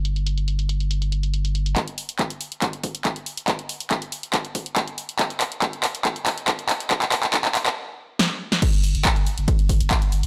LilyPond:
<<
  \new Staff \with { instrumentName = "Sub bass" } { \clef bass \time 4/4 \key c \dorian \tempo 4 = 140 g,,1 | r1 | r1 | r1 |
r1 | r16 g,,16 g,,16 g,,16 r16 g,,16 r16 g,,16 r16 g,,16 g,,16 g,,16 r8 g,,16 g,,16 | }
  \new DrumStaff \with { instrumentName = "Drums" } \drummode { \time 4/4 hh16 hh16 hh16 hh16 hh16 hh16 hh16 hh16 hh16 hh16 hh16 hh16 hh16 hh16 hh16 hh16 | <hc hh bd>16 hh16 hho16 hh16 <hc hh bd>16 hh16 hho16 hh16 <hc hh bd>16 hh16 <hho bd>16 hh16 <hc hh bd>16 hh16 hho16 hh16 | <hc hh bd>16 hh16 hho16 hh16 <hc hh bd>16 hh16 hho16 hh16 <hc hh bd>16 hh16 <hho bd>16 hh16 <hc hh bd>16 hh16 hho16 hh16 | <hc hh bd>16 hh16 <hc hho>16 hh16 <hc hh bd>16 hh16 <hc hho>16 hh16 <hc hh bd>16 hh16 <hc hho bd>16 hh16 <hc hh bd>16 hh16 <hc hho>16 hh16 |
<hc hh bd>16 <hc hh>16 <hc hho>16 <hc hh>16 <hc hh bd>16 <hc hh>16 <hc hho>16 <hc hh>16 r4 sn8. sn16 | <cymc hh bd cymr>16 hh16 hho16 hh16 <hc hh bd cymr>16 hh16 hho16 hh16 <hh bd cymr>16 hh16 <hho bd>16 hh16 <hc hh bd cymr>16 hh16 hho16 hh16 | }
>>